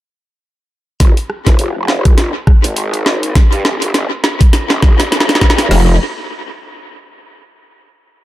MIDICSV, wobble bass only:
0, 0, Header, 1, 2, 480
1, 0, Start_track
1, 0, Key_signature, -4, "minor"
1, 0, Tempo, 588235
1, 818, Time_signature, 4, 2, 24, 8
1, 6725, End_track
2, 0, Start_track
2, 0, Title_t, "Wobble bass"
2, 0, Program_c, 0, 39
2, 818, Note_on_c, 0, 29, 100
2, 935, Note_off_c, 0, 29, 0
2, 1197, Note_on_c, 0, 27, 94
2, 1282, Note_off_c, 0, 27, 0
2, 1297, Note_on_c, 0, 29, 95
2, 1414, Note_off_c, 0, 29, 0
2, 1437, Note_on_c, 0, 29, 93
2, 1895, Note_off_c, 0, 29, 0
2, 2157, Note_on_c, 0, 32, 93
2, 2722, Note_off_c, 0, 32, 0
2, 2877, Note_on_c, 0, 43, 97
2, 2962, Note_off_c, 0, 43, 0
2, 2977, Note_on_c, 0, 31, 94
2, 3094, Note_off_c, 0, 31, 0
2, 3117, Note_on_c, 0, 31, 96
2, 3202, Note_off_c, 0, 31, 0
2, 3218, Note_on_c, 0, 31, 97
2, 3335, Note_off_c, 0, 31, 0
2, 3836, Note_on_c, 0, 31, 91
2, 4294, Note_off_c, 0, 31, 0
2, 4317, Note_on_c, 0, 43, 98
2, 4642, Note_off_c, 0, 43, 0
2, 4659, Note_on_c, 0, 29, 103
2, 4882, Note_off_c, 0, 29, 0
2, 6725, End_track
0, 0, End_of_file